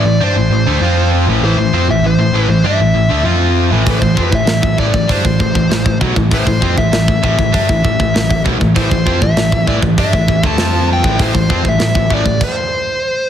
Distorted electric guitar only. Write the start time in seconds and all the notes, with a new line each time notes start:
0.05 A2 E3
0.21 G3 D4
0.36 A2 E3
0.52 A2 E3
0.67 D3 A3
0.82 F3 C4 F4
1.29 A2 E3
1.44 A2 E3
1.59 A2 E3
1.73 F3 C4
1.89 A2 E3
2.05 A2 E3
2.19 A2 E3
2.33 A2 E3
2.49 A2 E3
2.64 G3 D4
2.79 A2 E3
2.94 A2 E3
3.09 D3 A3
3.24 F3 C4 F4
3.71 A2 E3
3.85 A2 E3
4.01 A2 E3
4.15 F3 C4
4.31 A2 E3
4.45 A2 E3
4.61 A2 E3
4.77 A2 E3
4.93 A2 E3
5.07 G3 D4
5.23 A2 E3
5.39 A2 E3
5.54 A2 E3
5.69 A2 E3
5.84 A2 E3
6.00 B2 F#3
6.16 A2 E3
6.31 A2 E3
6.47 A2 E3
6.61 F3 C4
6.77 A2 E3
6.93 A2 E3
7.08 A2 E3
7.23 A2 E3
7.39 A2 E3
7.54 G3 D4
7.69 A2 E3
7.84 A2 E3
7.99 A2 E3
8.15 A2 E3
8.30 A2 E3
8.44 B2 F#3
8.59 A2 E3
8.76 A2 E3
8.91 A2 E3
9.06 F3 C4
9.21 A2 E3
9.37 A2 E3
9.52 A2 E3
9.66 A2 E3
9.82 A2 E3
9.98 G3 D4
10.13 A2 E3
10.28 A2 E3
10.43 D3 A3
10.58 F3 C4 F4
11.04 A2 E3
11.19 A2 E3
11.34 A2 E3
11.49 F3 C4
11.63 A2 E3
11.79 A2 E3
11.95 A2 E3
12.10 A2 E3
12.25 A2 E3